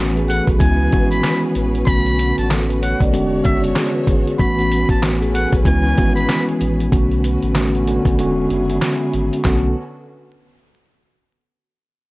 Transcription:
Already playing: sub bass A1, tine electric piano E3 A3 B3 C#4 F#4, string section E3 A3 C#4 F#4 B4
0.17 tine electric piano G#4, closed hi-hat
0.29 tine electric piano A4, muted trumpet F#5, closed hi-hat
0.47 sub bass B1, tine electric piano F#4, kick, closed hi-hat
0.60 sub bass C#2, tine electric piano E3 G#3 B3 C#4 E4, string section B3 C#4 G#4, muted trumpet G#5, kick, closed hi-hat
0.91 sub bass G#1, tine electric piano D#3 G#3 B3 C#4 F#4, kick, closed hi-hat
0.98 tine electric piano E3
1.11 muted trumpet B5, closed hi-hat
1.24 snare, clap, closed hi-hat
1.55 sub bass A1, closed hi-hat
1.75 closed hi-hat
1.86 sub bass B1, tine electric piano D3 A3 B3 C#4 F#4, string section D3 A3 F#4, muted trumpet B5, kick, closed hi-hat
2.06 closed hi-hat
2.19 closed hi-hat
2.37 sub bass A1, muted trumpet A5, closed hi-hat
2.50 snare, clap, closed hi-hat
2.69 tine electric piano B4, closed hi-hat
2.82 tine electric piano C#5, muted trumpet F#5, closed hi-hat
3.00 sub bass B1, tine electric piano D5, kick, closed hi-hat
3.11 sub bass E1, tine electric piano D3 G#3 B3 C#4 F#4, string section E3 G#3 D4 C#5, closed hi-hat
3.45 sub bass F#1, muted trumpet E5, kick, closed hi-hat
3.64 closed hi-hat
3.76 tine electric piano G#4, snare, clap, closed hi-hat
3.95 tine electric piano B4
4.07 sub bass G#1, tine electric piano G#4, kick, closed hi-hat
4.27 tine electric piano F#4, closed hi-hat
4.38 sub bass A1, tine electric piano E3 A3 B3 C#4 F#4, string section A3 C#4 B4, muted trumpet B5, kick, closed hi-hat
4.59 closed hi-hat
4.72 closed hi-hat
4.89 sub bass A1, muted trumpet A5, kick, closed hi-hat
5.02 tine electric piano F#4, snare, clap, closed hi-hat
5.22 tine electric piano G#4, closed hi-hat
5.34 tine electric piano A4, muted trumpet F#5, closed hi-hat
5.53 sub bass B1, tine electric piano F#4, kick, closed hi-hat
5.65 sub bass C#2, tine electric piano E3 G#3 B3 C#4 E4, string section E3 B3 G#4, muted trumpet G#5, kick, closed hi-hat
5.96 sub bass G#1, tine electric piano D#3 G#3 B3 C#4 F#4, kick, closed hi-hat
6.03 tine electric piano E3
6.16 muted trumpet B5, closed hi-hat
6.29 snare, clap, closed hi-hat
6.48 closed hi-hat
6.61 sub bass A1, closed hi-hat
6.80 closed hi-hat
6.91 sub bass B1, tine electric piano D3 A3 B3 C#4 F#4, string section D3 A3 C#4 F#4 B4, kick, closed hi-hat
7.11 closed hi-hat
7.24 closed hi-hat
7.43 sub bass A1, closed hi-hat
7.55 tine electric piano D3 A3 B3 C#4 F#4, snare, clap, closed hi-hat
7.75 closed hi-hat
7.87 tine electric piano D3 A3 B3 C#4 F#4, closed hi-hat
8.05 sub bass B1, kick, closed hi-hat
8.18 sub bass E1, tine electric piano D3 G#3 B3 C#4 F#4, string section F#3 E4 G#4, closed hi-hat
8.50 sub bass F#1, closed hi-hat
8.70 closed hi-hat
8.82 snare, clap, closed hi-hat
9.13 sub bass G#1, closed hi-hat
9.33 closed hi-hat
9.45 sub bass B1, tine electric piano D3 A3 B3 C#4 F#4, string section D3 B3 C#4 F#4 A4, kick, snare, clap

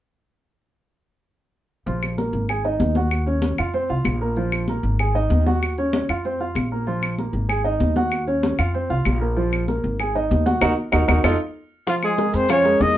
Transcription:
1.86 upright bass A#1, grand piano F3 F4, high conga
2.03 high conga, claves
2.18 grand piano A#3 A#4, high conga
2.33 upright bass G#1, high conga
2.49 grand piano G#4 G#5, high conga, claves
2.65 grand piano D#4 D#5, high conga
2.80 upright bass D#2, high conga
2.95 grand piano F#4 F#5, high conga
3.11 high conga, claves
3.26 grand piano C#4 C#5, high conga
3.42 high conga
3.58 upright bass F2, grand piano F4 F5, claves
3.74 grand piano C4 C5, high conga
3.90 upright bass C2, grand piano F4 F5, high conga
4.05 upright bass A#1, high conga, claves
4.21 grand piano A#3 A#4
4.36 grand piano F3 F4, high conga
4.52 high conga, claves
4.68 grand piano A#3 A#4, high conga
4.83 upright bass G#1, high conga
4.99 grand piano G#4 G#5, high conga, claves
5.15 grand piano D#4 D#5, high conga
5.30 upright bass D#2, high conga
5.46 grand piano F#4 F#5, high conga
5.62 high conga, claves
5.78 grand piano C#4 C#5, high conga
5.93 high conga
6.09 upright bass F2, grand piano F4 F5, claves
6.25 grand piano C4 C5, high conga
6.40 grand piano F4 F5, high conga
6.55 upright bass A#1, high conga, claves
6.72 grand piano A#3 A#4
6.87 grand piano F3 F4, high conga
7.02 high conga, claves
7.18 grand piano A#3 A#4, high conga
7.33 upright bass G#1, high conga
7.49 grand piano G#4 G#5, high conga, claves
7.64 grand piano D#4 D#5, high conga
7.80 upright bass D#2, high conga
7.96 grand piano F#4 F#5, high conga
8.12 high conga, claves
8.27 grand piano C#4 C#5, high conga
8.43 high conga
8.58 upright bass F2, grand piano F4 F5, claves
8.74 grand piano C4 C5, high conga
8.90 upright bass C2, grand piano F4 F5, high conga
9.05 upright bass A#1, high conga, claves
9.21 grand piano A#3 A#4
9.36 grand piano F3 F4, high conga
9.52 high conga, claves
9.68 grand piano A#3 A#4, high conga
9.84 upright bass G#1, high conga
10.00 grand piano G#4 G#5, high conga, claves
10.15 grand piano D#4 D#5, high conga
10.31 upright bass D#2, high conga
10.46 grand piano F#4 F#5, high conga
10.61 upright bass D#2, grand piano D#4 F#4 A#4, high conga, claves
10.92 upright bass D#2, grand piano D#4 F#4 A#4, high conga, claves
11.08 upright bass D#2, grand piano D#4 F#4 A#4, high conga, claves
11.24 upright bass F2, grand piano D#4 F4 A4, high conga, claves
11.87 grand piano F3 F4 F5, trombone F3, trumpet F4, high bongo, high conga, maracas
12.03 trombone G#3, trumpet G#4, high conga, claves, maracas
12.18 grand piano G#3 G#4 A#4, high bongo, high conga, maracas
12.33 upright bass F2, trombone C4, trumpet C5, high bongo, high conga, maracas
12.49 grand piano F3 F4 F5, trombone C#4, trumpet C#5, high bongo, high conga, claves, maracas
12.64 grand piano G#3 G#4 A#4, high bongo, high conga, maracas
12.80 upright bass E2, trombone D#4, trumpet D#5, high bongo, low bongo, high conga, maracas

